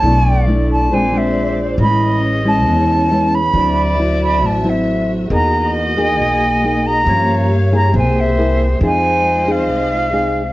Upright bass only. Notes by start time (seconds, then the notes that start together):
0.03 B1
0.90 A#1
1.78 A1
2.66 E2
3.54 D2
4.42 A1
5.30 E2
6.19 B1
7.06 G2
7.94 C2
8.81 F2
9.69 C2